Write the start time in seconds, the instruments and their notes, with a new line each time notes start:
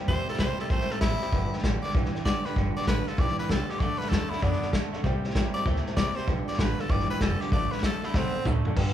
0.08 upright bass E2, steel-string acoustic guitar C3 G3 A#3 E4 G4, clean electric guitar C3 G3, tenor saxophone C5, honky-tonk piano C5 E5 G5, kick, snare
0.27 steel-string acoustic guitar A#3 E4, tenor saxophone A4, honky-tonk piano C5 E5 A#5, muted upright bass stroke, snare
0.33 snare
0.39 upright bass C2, clean electric guitar C3 G3, steel-string acoustic guitar G3 E4, tenor saxophone C5, honky-tonk piano C5 E5 G5, kick, snare, hi-hat pedal
0.58 clean electric guitar C3 G3, steel-string acoustic guitar A#3 G4, tenor saxophone A4, honky-tonk piano C5 E5 G5, muted upright bass stroke, snare
0.70 upright bass A#1, steel-string acoustic guitar C3 G3 A#3 E4 G4, clean electric guitar C3 A3, honky-tonk piano C5 E5 G5, tenor saxophone C5, kick, snare
0.80 snare
0.89 steel-string acoustic guitar A#3 E4 G4, tenor saxophone A4, honky-tonk piano C5 E5 A#5, muted upright bass stroke, snare
1.01 upright bass A1, clean electric guitar C3 G3, steel-string acoustic guitar G3 A#3 E4, tenor saxophone E4, honky-tonk piano C5 E5 G5, kick, snare, hi-hat pedal
1.20 clean electric guitar C3 G3, steel-string acoustic guitar A#3 E4 G4, honky-tonk piano C5 E5 G5, muted upright bass stroke, snare
1.32 upright bass G1, steel-string acoustic guitar G2 D3 F3 B3 D4 G4, clean electric guitar G2 D3, honky-tonk piano B4 D5 G5, kick, snare
1.50 steel-string acoustic guitar F3 B3 D4 G4, honky-tonk piano B4 D5 G5, snare
1.58 snare
1.62 upright bass A1, clean electric guitar G2 D3, steel-string acoustic guitar F3 B3 D4 G4, honky-tonk piano B4 D5 G5, kick, snare, hi-hat pedal
1.82 clean electric guitar G2 D3, steel-string acoustic guitar F3 B3 D4 G4, honky-tonk piano B4 D5, tenor saxophone D5, muted upright bass stroke, snare
1.90 snare
1.94 upright bass B1, steel-string acoustic guitar G2 D3 F3 B3 D4 G4, clean electric guitar G2 E3, honky-tonk piano B4 D5 G5, kick, snare
2.05 snare
2.13 steel-string acoustic guitar F3 B3 D4 G4, honky-tonk piano B4 D5 G5, muted upright bass stroke, snare
2.25 upright bass A1, clean electric guitar G2 D3, steel-string acoustic guitar F3 D4, honky-tonk piano B4 D5 G5, tenor saxophone D5, kick, snare, hi-hat pedal
2.44 clean electric guitar G2 D3, steel-string acoustic guitar F3 B3 D4 G4, tenor saxophone B4, honky-tonk piano B4 D5 G5, snare
2.56 upright bass G1, clean electric guitar G2 D3, steel-string acoustic guitar G2 D3 F3 B3 D4 G4, honky-tonk piano B4 D5 G5, kick, snare
2.76 steel-string acoustic guitar F3 B3 D4 G4, honky-tonk piano B4 D5 G5, tenor saxophone D5, muted upright bass stroke, snare
2.82 snare
2.87 upright bass A1, clean electric guitar G2 D3, steel-string acoustic guitar F3, tenor saxophone B4, honky-tonk piano B4 D5, kick, snare, hi-hat pedal
3.06 clean electric guitar G2 D3, steel-string acoustic guitar F3 B3 D4 G4, tenor saxophone A4, honky-tonk piano B4 D5 F5, snare
3.17 upright bass B1, steel-string acoustic guitar G2 D3 F3 B3 D4 G4, clean electric guitar G2 E3, honky-tonk piano B4 D5 G5, tenor saxophone D5, kick, snare
3.28 snare
3.37 steel-string acoustic guitar F3 B3 D4 G4, tenor saxophone B4, honky-tonk piano D5, snare
3.48 upright bass C2, clean electric guitar G2 D3, steel-string acoustic guitar F3 B3, tenor saxophone A4, honky-tonk piano B4 D5, kick, snare, hi-hat pedal
3.52 honky-tonk piano G5
3.68 clean electric guitar G2 D3, steel-string acoustic guitar F3 B3 D4 G4, tenor saxophone G4, honky-tonk piano B4 D5, muted upright bass stroke, snare
3.72 honky-tonk piano G5
3.80 upright bass D2, steel-string acoustic guitar D3 F#3 C4 D4 A4, clean electric guitar D3 A3, honky-tonk piano A4 D5 F#5, tenor saxophone D5, kick, snare
3.98 steel-string acoustic guitar C4 D4 A4, tenor saxophone B4, muted upright bass stroke, snare
4.02 honky-tonk piano A4 D5 E5
4.06 tenor saxophone A4, snare
4.11 upright bass E2, clean electric guitar D3 A3, steel-string acoustic guitar F#3 C4 D4 A4, honky-tonk piano A4 D5 F#5, kick, snare, hi-hat pedal
4.30 clean electric guitar D3 A3, steel-string acoustic guitar C4 D4 A4, tenor saxophone E4, honky-tonk piano A4 D5 F#5, muted upright bass stroke, snare
4.38 steel-string acoustic guitar D3, snare
4.42 upright bass F#2, clean electric guitar D3 B3, steel-string acoustic guitar F#3 C4 D4 A4, tenor saxophone D4, honky-tonk piano A4 D5 F#5, kick, snare
4.53 snare
4.62 steel-string acoustic guitar C4 D4 A4, honky-tonk piano A4 D5 A5, muted upright bass stroke, snare
4.72 clean electric guitar D3 A3, steel-string acoustic guitar F#3 C4 A4, honky-tonk piano A4 D5 F#5, kick, snare, hi-hat pedal
4.93 clean electric guitar D3 A3, steel-string acoustic guitar C4 D4 A4, honky-tonk piano A4 D5 F#5, muted upright bass stroke, snare
5.03 upright bass C2, steel-string acoustic guitar C3 G3 A#3 E4 G4, clean electric guitar C3 G3, honky-tonk piano C5 E5 G5, kick, snare
5.23 steel-string acoustic guitar A#3 E4 G4, honky-tonk piano C5 E5 G5, muted upright bass stroke, snare
5.30 snare
5.34 upright bass A#1, clean electric guitar C3 G3, steel-string acoustic guitar G3, honky-tonk piano C5 E5 G5, kick, snare, hi-hat pedal
5.53 clean electric guitar C3 G3, steel-string acoustic guitar E4 G4, honky-tonk piano C5 E5, tenor saxophone D5, snare
5.65 upright bass D2, steel-string acoustic guitar C3 G3 A#3 E4 G4, clean electric guitar C3 A3, honky-tonk piano C5 E5 G5, kick, snare
5.76 snare
5.85 steel-string acoustic guitar A#3 E4 G4, honky-tonk piano C5 E5 A#5, snare
5.96 upright bass C2, clean electric guitar C3 G3, steel-string acoustic guitar A#3, honky-tonk piano C5 G5, tenor saxophone D5, kick, snare, hi-hat pedal
6.15 clean electric guitar C3 G3, steel-string acoustic guitar A#3 E4 G4, tenor saxophone C5, honky-tonk piano C5 E5 G5, muted upright bass stroke, snare
6.27 upright bass B1, clean electric guitar G2 D3, steel-string acoustic guitar G2 D3 F3 B3 F4 G4, honky-tonk piano B4 D5 G5, kick, snare
6.47 steel-string acoustic guitar F3 B3 F4 G4, honky-tonk piano B4 D5, tenor saxophone D5, muted upright bass stroke, snare
6.53 snare
6.58 upright bass A1, clean electric guitar G2 D3, steel-string acoustic guitar F3 B3 F4, honky-tonk piano B4 D5 A5, tenor saxophone B4, kick, snare, hi-hat pedal
6.77 clean electric guitar G2 D3, steel-string acoustic guitar F3 B3 F4 G4, tenor saxophone A4, honky-tonk piano B4 D5 F5, muted upright bass stroke, snare
6.88 upright bass G1, clean electric guitar G2 E3, steel-string acoustic guitar G2 D3 F3 B3 G4, honky-tonk piano B4 D5 G5, tenor saxophone D5, kick, snare
6.92 steel-string acoustic guitar F4
7.00 snare
7.09 steel-string acoustic guitar F3 B3 F4 G4, tenor saxophone B4, honky-tonk piano B4 D5 G5, muted upright bass stroke, snare
7.21 upright bass F1, clean electric guitar G2 D3, steel-string acoustic guitar F3, tenor saxophone A4, honky-tonk piano B4 D5, kick, snare, hi-hat pedal
7.40 clean electric guitar G2 D3, steel-string acoustic guitar F3 B3 F4 G4, tenor saxophone G4, honky-tonk piano B4 D5 G5, muted upright bass stroke, snare
7.51 upright bass A1, clean electric guitar D3 A3, steel-string acoustic guitar D3 F#3 C4 D4 A4, honky-tonk piano A4 D5 F#5, tenor saxophone D5, kick, snare
7.71 steel-string acoustic guitar C4 D4 A4, honky-tonk piano A4 D5 F#5, tenor saxophone B4, snare
7.78 snare
7.83 upright bass B1, clean electric guitar D3 A3, steel-string acoustic guitar F#3 C4 D4, honky-tonk piano A4 D5 F#5, tenor saxophone A4, kick, snare, hi-hat pedal
8.03 clean electric guitar D3 A3, steel-string acoustic guitar C4 D4 A4, tenor saxophone E4, honky-tonk piano A4 D5 E5, muted upright bass stroke, snare
8.14 upright bass C2, steel-string acoustic guitar D3 F#3 C4 D4 A4, clean electric guitar D3 B3, tenor saxophone C4, honky-tonk piano A4 D5 F#5, kick, snare
8.34 steel-string acoustic guitar C4 D4 A4, honky-tonk piano A4 D5 F#5, muted upright bass stroke
8.45 upright bass D2, clean electric guitar D3 A3, steel-string acoustic guitar F#3 C4 D4 A4, honky-tonk piano A4 D5 F#5, kick, hi-hat pedal, mid tom
8.65 clean electric guitar D3 A3, steel-string acoustic guitar D4 A4, honky-tonk piano A4 D5 F#5, muted upright bass stroke, floor tom
8.69 steel-string acoustic guitar C4
8.76 upright bass G2, steel-string acoustic guitar G2 D3 F3 B3 F4 G4, clean electric guitar G2 D3, honky-tonk piano B4 D5 G5, kick, snare, crash